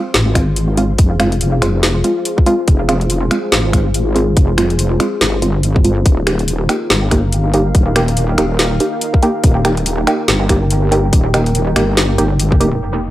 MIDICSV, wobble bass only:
0, 0, Header, 1, 2, 480
1, 0, Start_track
1, 0, Tempo, 422535
1, 1121, Time_signature, 4, 2, 24, 8
1, 14887, End_track
2, 0, Start_track
2, 0, Title_t, "Wobble bass"
2, 0, Program_c, 0, 39
2, 161, Note_on_c, 0, 32, 92
2, 1105, Note_off_c, 0, 32, 0
2, 1121, Note_on_c, 0, 29, 92
2, 1826, Note_off_c, 0, 29, 0
2, 1839, Note_on_c, 0, 29, 97
2, 2304, Note_off_c, 0, 29, 0
2, 3040, Note_on_c, 0, 29, 96
2, 3745, Note_off_c, 0, 29, 0
2, 4001, Note_on_c, 0, 32, 94
2, 4946, Note_off_c, 0, 32, 0
2, 4960, Note_on_c, 0, 29, 95
2, 5665, Note_off_c, 0, 29, 0
2, 5920, Note_on_c, 0, 31, 94
2, 6865, Note_off_c, 0, 31, 0
2, 6880, Note_on_c, 0, 27, 93
2, 7585, Note_off_c, 0, 27, 0
2, 7838, Note_on_c, 0, 31, 92
2, 8784, Note_off_c, 0, 31, 0
2, 8801, Note_on_c, 0, 27, 95
2, 9506, Note_off_c, 0, 27, 0
2, 9517, Note_on_c, 0, 27, 98
2, 9984, Note_off_c, 0, 27, 0
2, 10721, Note_on_c, 0, 27, 91
2, 11425, Note_off_c, 0, 27, 0
2, 11679, Note_on_c, 0, 31, 96
2, 12624, Note_off_c, 0, 31, 0
2, 12641, Note_on_c, 0, 27, 93
2, 13346, Note_off_c, 0, 27, 0
2, 13360, Note_on_c, 0, 31, 97
2, 13825, Note_off_c, 0, 31, 0
2, 13840, Note_on_c, 0, 31, 94
2, 14545, Note_off_c, 0, 31, 0
2, 14561, Note_on_c, 0, 29, 80
2, 14887, Note_off_c, 0, 29, 0
2, 14887, End_track
0, 0, End_of_file